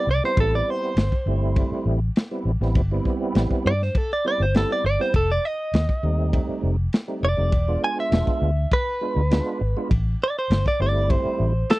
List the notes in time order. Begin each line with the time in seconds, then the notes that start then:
0.07 C2 D5
0.23 G3 B3 C4 E4 C5, snare
0.37 A1 A4, kick, ride bell
0.55 D5
0.70 C5
0.96 G1, snare, ride bell
1.12 kick
1.26 G1 G3 A3 C4 E4
1.56 kick, ride bell
1.71 muted fingered electric bass stroke
1.86 A1
2.16 snare, ride bell
2.31 G3 B3 C4 E4
2.45 A1
2.61 A1 G3 B3 C4 E4, snare
2.75 G1, kick, ride bell
2.91 G3 B3 C4 E4
3.05 kick
3.35 A1, snare, ride bell
3.51 kick
3.65 G2 D5
3.82 C5, snare
3.95 A4, kick, ride bell
4.13 D5
4.25 G3 B3 C4 E4 D5
4.40 G1 C5
4.55 G3 B3 C4 E4 A4, snare, ride bell
4.72 D5
4.84 G1 D5
4.99 G3 B3 C4 E4 C5, snare
5.14 F1 A4, kick, ride bell
5.32 D5
5.45 D#5
5.74 D#2, snare, ride bell
5.89 kick
6.03 D#2 G3 A3 C4 D#4
6.33 kick, ride bell
6.49 muted fingered electric bass stroke
6.63 F1
6.93 snare, ride bell
7.08 G3 A3 C4 D#4
7.23 F1 D5
7.37 F1 G3 A3 C4 D#4
7.52 E1, kick, ride bell
7.68 G#3 B3 D4 F4
7.84 G#5
8.00 E5
8.12 E1, snare, ride bell
8.27 muted fingered electric bass stroke, kick
8.42 D2
8.72 B4, kick, ride bell
9.01 G#3 B3 D4 F4
9.16 D2
9.30 G#3 B3 D4 F4, snare, ride bell
9.61 G#1
9.77 G#3 B3 D4 F4
9.91 A1, kick, ride bell
10.24 D5
10.39 C5
10.50 G1, snare, ride bell
10.66 D5, kick
10.80 G1 G3 A3 C4 E4 D5
11.10 C5, kick, ride bell
11.25 muted fingered electric bass stroke
11.40 A1
11.70 A4, snare, ride bell